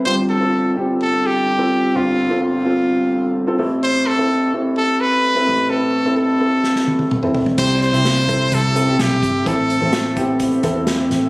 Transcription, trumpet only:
X:1
M:4/4
L:1/8
Q:1/4=128
K:Am
V:1 name="Trumpet"
c A2 z A G3 | F2 F4 z2 | c A2 z A B3 | A2 A4 z2 |
c c3 A2 G2 | A4 z4 |]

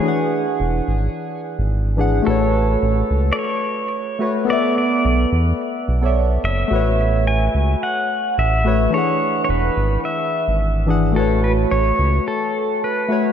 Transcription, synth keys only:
X:1
M:4/4
L:1/16
Q:"Swing 16ths" 1/4=108
K:A
V:1 name="Synth keys"
[E,DGf]12- [E,DGf]2 [E,DGf]2 | [A,FBc]12- [A,FBc]2 [A,FBc]2 | [B,ABde]8- [B,ABde]3 [B,Acde] z4 | [A,FBc]12- [A,FBc]2 [A,FBc]2 |
[E,DGf]12- [E,DGf]2 [E,DGf]2 | [A,FBc]12- [A,FBc]2 [A,FBc]2 |]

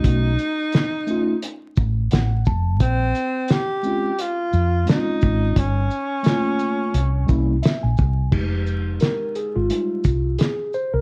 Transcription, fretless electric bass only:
X:1
M:4/4
L:1/16
Q:"Swing 16ths" 1/4=87
K:Fm
V:1 name="Fretless electric bass" clef=bass
=B,,,2 z8 =A,,,2 A,,,2 F,,,2 | B,,,2 z8 F,,2 z2 A,,,2 | G,,,2 z6 C,,2 C,,2 z B,,, C,,2 | F,,,4 z3 A,,, z2 C,,2 z3 C,, |]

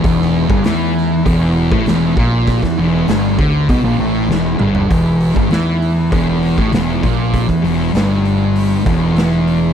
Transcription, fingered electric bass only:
X:1
M:4/4
L:1/16
Q:1/4=99
K:Em
V:1 name="Fingered electric bass" clef=bass
E,,,3 G,,, E,,4 E,,,3 A,,, E,,,2 ^A,,,2- | ^A,,, E,, E,,,2 G,,,2 D,,2 B,,, A,,, =A,,,2 E,,,2 G,,,2 | E,,,3 G,,, E,,4 E,,,3 A,,, E,,,2 ^A,,,2- | ^A,,, E,, E,,,2 G,,,6 E,,,6 |]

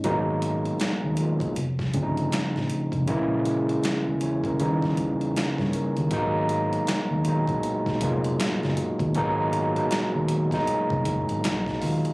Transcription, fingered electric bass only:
X:1
M:4/4
L:1/16
Q:"Swing 16ths" 1/4=79
K:G#dor
V:1 name="Fingered electric bass" clef=bass
G,,,4 z D,,2 z =F,,,2 =G,,,2 z =A,,, z F,,, | A,,,4 z =E,,2 z D,,2 E,,2 z =G,, z D,, | G,,,4 z D,,2 z3 E,,,2 z F,,, z D,, | G,,,4 z D,,2 z2 E,,, F,,, G,,, B,,,2 D,, z |]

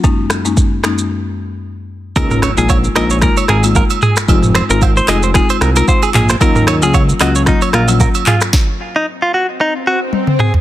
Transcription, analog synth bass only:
X:1
M:4/4
L:1/16
Q:"Swing 16ths" 1/4=113
K:Db
V:1 name="Analog synth bass" clef=bass
z16 | D,,3 B,,,3 B,,,3 z A,,,3 z3 | F,,,3 A,,,3 F,,,3 z C,,2 z2 B,,,2 | E,,3 D,,3 D,,3 z B,,,3 z3 |
z16 |]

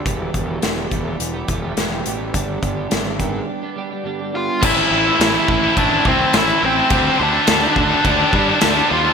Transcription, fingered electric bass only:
X:1
M:4/4
L:1/8
Q:1/4=105
K:Am
V:1 name="Fingered electric bass" clef=bass
E,,, E,,, E,,, E,,, E,,, E,,, E,,, A,,, | G,,, G,,, ^G,,,2 z4 | A,,, A,,, A,,, A,,, A,,, C,, A,,, A,,, | D,, D,, D,, D,, D,, G,, D,, ^D,, |]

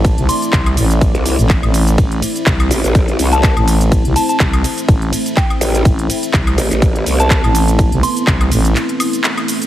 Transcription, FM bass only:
X:1
M:4/4
L:1/16
Q:"Swing 16ths" 1/4=124
K:Am
V:1 name="FM bass" clef=bass
A,,, C,, z2 C,,2 A,,,3 z2 A,,,2 A,,,3 | A,,,2 z2 C,,2 z6 z A,,,3- | A,,, C,, z2 C,,2 z2 A,,,2 z6 | A,,,2 z2 C,,2 z6 z A,,,3- |
A,,, C,, z2 C,,2 A,,,2 z8 |]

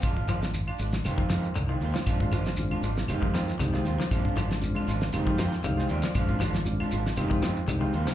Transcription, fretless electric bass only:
X:1
M:4/4
L:1/16
Q:"Swing 16ths" 1/4=118
K:Bbmix
V:1 name="Fretless electric bass" clef=bass
B,,, A,,,4- A,,, A,,,2 F,,, F,,3 C,,2 E,, z | B,,, A,,,4- A,,, A,,,2 F,,, F,,3 C,,2 E,, z | B,,, A,,,4- A,,, A,,,2 F,,, F,,3 C,,2 E,, z | B,,, A,,,4- A,,, A,,,2 F,,, F,,3 C,,2 E,, z |]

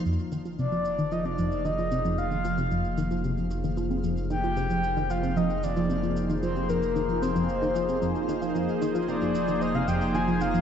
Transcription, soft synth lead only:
X:1
M:4/4
L:1/16
Q:1/4=113
K:Fdor
V:1 name="Soft synth lead"
z4 d4 e d3 e4 | f8 z8 | g6 f2 e2 d4 z2 | c2 B4 c6 z4 |
z4 d4 e f g2 a2 f2 |]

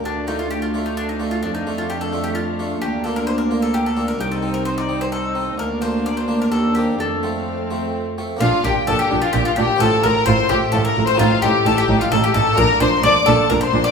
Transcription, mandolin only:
X:1
M:3/4
L:1/16
Q:1/4=130
K:Dphr
V:1 name="Mandolin"
D2 E F G F2 E D E2 F | D E2 F G A2 G F4 | [K:Bb] G2 A B c B2 A G A2 B | G A2 B c d2 c A4 |
B2 c2 d c2 B A2 G2 | A8 z4 | F2 G2 A G2 F G F G2 | A2 B2 c2 G2 A B2 c |
F2 G2 A G2 F A G A2 | B2 c2 d2 A2 B c2 d |]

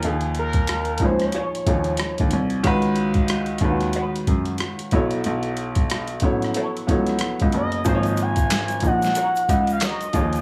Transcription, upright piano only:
X:1
M:4/4
L:1/8
Q:"Swing 16ths" 1/4=92
K:G#dor
V:1 name="Upright piano"
[E,A,DGc]2 z [E,A,DGc]2 [E,A,DGc]2 z | [D,G,CFB]2 z [D,G,CEFB]3 z [F,B,=E=Ac]- | [F,B,=E=Ac]2 z [F,B,EAc]2 [F,B,EAc]2 z | [E,A,DG^Bc]2 z [E,A,DGd]3 z [E,A,D=G^Gc] |]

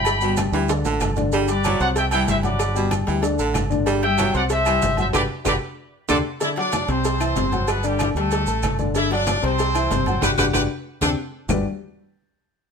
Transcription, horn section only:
X:1
M:4/4
L:1/8
Q:1/4=189
K:G
V:1 name="Horn section"
z8 | z8 | z8 | z8 |
z8 | [Ee] [Dd]2 [Cc]4- [Cc] | [B,B] [G,G] [G,G] [A,A]4 z | [Ee] [Dd]2 [Cc]4- [Cc] |
[FGB] [FGB] [FGB] z2 [DGA] z2 | z8 |]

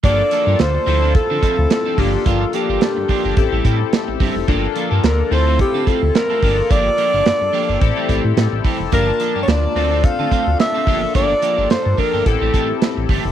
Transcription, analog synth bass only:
X:1
M:4/4
L:1/16
Q:"Swing 16ths" 1/4=108
K:Gdor
V:1 name="Analog synth bass" clef=bass
G,,,2 z G,, D,,2 D,,3 D, z D,, z2 G,,,2 | G,,,2 z G,,, G,, G,, z G,,, A,,, A,,, A,,2 z A,,, G,,, F,,, | G,,,2 z G,, D,,2 D,,3 D, z D,, z2 G,,,2 | G,,,2 z G,,, G,, G,, z G,,, A,,, z A,,, A,, A,, A,,, z F,,, |
G,,,2 z G,, D,,2 D,,3 D, z D,, z2 G,,,2 | G,,,2 z G,,, G,, G,, z G,,, A,,, A,,, A,,2 z A,,, G,,, F,,, |]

